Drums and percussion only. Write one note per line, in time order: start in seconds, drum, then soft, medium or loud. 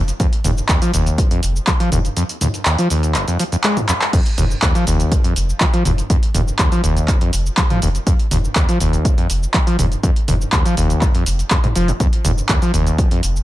0.08 closed hi-hat soft
0.08 shaker soft
0.20 kick loud
0.20 closed hi-hat medium
0.20 shaker soft
0.33 closed hi-hat medium
0.44 mid tom medium
0.44 open hi-hat loud
0.44 shaker medium
0.58 shaker soft
0.69 kick loud
0.69 clap loud
0.69 closed hi-hat medium
0.69 shaker soft
0.82 closed hi-hat medium
0.82 shaker soft
0.94 open hi-hat loud
0.94 shaker medium
1.06 closed hi-hat soft
1.06 shaker soft
1.18 kick loud
1.18 closed hi-hat medium
1.18 shaker soft
1.31 closed hi-hat medium
1.43 open hi-hat loud
1.43 shaker medium
1.56 shaker soft
1.67 kick loud
1.67 clap loud
1.67 closed hi-hat medium
1.67 shaker soft
1.80 closed hi-hat medium
1.92 mid tom medium
1.92 open hi-hat loud
1.92 shaker medium
2.05 closed hi-hat soft
2.05 shaker soft
2.17 closed hi-hat medium
2.17 shaker soft
2.29 closed hi-hat medium
2.29 shaker soft
2.41 mid tom medium
2.41 open hi-hat loud
2.41 shaker medium
2.54 closed hi-hat soft
2.54 shaker soft
2.65 clap loud
2.65 closed hi-hat medium
2.65 shaker soft
2.79 closed hi-hat medium
2.79 shaker soft
2.90 open hi-hat loud
2.90 shaker medium
3.03 closed hi-hat soft
3.03 shaker soft
3.14 clap medium
3.14 closed hi-hat medium
3.14 shaker soft
3.28 closed hi-hat medium
3.28 shaker soft
3.39 open hi-hat loud
3.39 shaker medium
3.52 closed hi-hat soft
3.52 shaker soft
3.64 clap loud
3.64 closed hi-hat medium
3.64 shaker soft
3.77 closed hi-hat medium
3.77 mid tom medium
3.77 shaker soft
3.89 clap medium
3.89 open hi-hat loud
3.89 shaker medium
4.01 clap medium
4.01 closed hi-hat soft
4.01 shaker soft
4.13 kick loud
4.13 closed hi-hat medium
4.13 crash medium
4.13 shaker soft
4.26 closed hi-hat medium
4.38 mid tom medium
4.38 open hi-hat loud
4.38 shaker medium
4.51 shaker soft
4.62 kick loud
4.62 clap loud
4.62 closed hi-hat medium
4.62 shaker soft
4.75 closed hi-hat medium
4.75 shaker soft
4.87 open hi-hat loud
4.87 shaker medium
5.00 closed hi-hat soft
5.00 shaker soft
5.12 kick loud
5.12 closed hi-hat medium
5.12 shaker soft
5.24 closed hi-hat medium
5.36 open hi-hat loud
5.36 shaker medium
5.50 shaker soft
5.60 kick loud
5.60 clap loud
5.60 closed hi-hat medium
5.60 shaker soft
5.74 closed hi-hat medium
5.85 mid tom medium
5.85 open hi-hat loud
5.85 shaker medium
5.98 closed hi-hat soft
5.98 shaker soft
6.10 kick loud
6.10 closed hi-hat medium
6.10 shaker soft
6.23 closed hi-hat medium
6.35 mid tom medium
6.35 open hi-hat loud
6.35 shaker medium
6.48 shaker soft
6.59 kick loud
6.59 clap loud
6.59 closed hi-hat medium
6.59 shaker soft
6.72 closed hi-hat medium
6.72 shaker soft
6.84 open hi-hat loud
6.84 shaker medium
6.97 closed hi-hat soft
6.97 shaker soft
7.08 kick loud
7.08 clap medium
7.08 closed hi-hat medium
7.08 shaker soft
7.21 closed hi-hat medium
7.33 open hi-hat loud
7.33 shaker medium
7.46 shaker soft
7.57 kick loud
7.57 clap loud
7.57 closed hi-hat medium
7.57 shaker soft
7.70 closed hi-hat medium
7.70 mid tom medium
7.82 open hi-hat loud
7.82 shaker medium
7.95 closed hi-hat soft
7.95 shaker soft
8.07 kick loud
8.07 closed hi-hat medium
8.07 shaker soft
8.19 closed hi-hat medium
8.31 mid tom loud
8.31 open hi-hat loud
8.31 shaker medium
8.45 shaker soft
8.55 kick loud
8.55 clap loud
8.55 closed hi-hat medium
8.55 shaker soft
8.69 closed hi-hat medium
8.69 shaker soft
8.80 open hi-hat loud
8.80 shaker medium
8.93 closed hi-hat soft
8.93 shaker soft
9.05 kick loud
9.05 closed hi-hat medium
9.05 shaker soft
9.18 closed hi-hat medium
9.30 open hi-hat loud
9.30 shaker medium
9.43 shaker soft
9.54 kick loud
9.54 clap loud
9.54 closed hi-hat medium
9.54 shaker soft
9.67 closed hi-hat medium
9.79 mid tom loud
9.79 open hi-hat loud
9.79 shaker medium
9.92 closed hi-hat soft
9.92 shaker soft
10.03 kick loud
10.03 closed hi-hat medium
10.03 shaker soft
10.16 closed hi-hat soft
10.28 mid tom loud
10.28 open hi-hat loud
10.28 shaker medium
10.41 shaker soft
10.52 kick loud
10.52 clap loud
10.52 closed hi-hat medium
10.52 shaker soft
10.65 closed hi-hat medium
10.65 shaker soft
10.77 open hi-hat loud
10.77 shaker medium
10.90 closed hi-hat soft
10.90 shaker soft
11.01 kick loud
11.01 clap medium
11.01 closed hi-hat medium
11.01 shaker soft
11.15 closed hi-hat medium
11.26 open hi-hat loud
11.26 shaker medium
11.39 closed hi-hat soft
11.39 shaker soft
11.50 kick loud
11.50 clap loud
11.50 closed hi-hat medium
11.50 shaker soft
11.64 closed hi-hat medium
11.64 mid tom medium
11.76 open hi-hat loud
11.76 shaker medium
11.88 closed hi-hat soft
11.88 shaker soft
12.00 kick loud
12.00 closed hi-hat medium
12.00 shaker soft
12.13 closed hi-hat medium
12.25 mid tom loud
12.25 open hi-hat loud
12.25 shaker medium
12.38 shaker soft
12.49 kick loud
12.49 clap loud
12.49 closed hi-hat medium
12.49 shaker soft
12.62 closed hi-hat medium
12.62 shaker soft
12.74 open hi-hat loud
12.74 shaker medium
12.87 closed hi-hat soft
12.87 shaker soft
12.98 kick loud
12.98 closed hi-hat medium
12.98 shaker soft
13.11 closed hi-hat medium
13.23 open hi-hat loud
13.23 shaker medium
13.36 shaker soft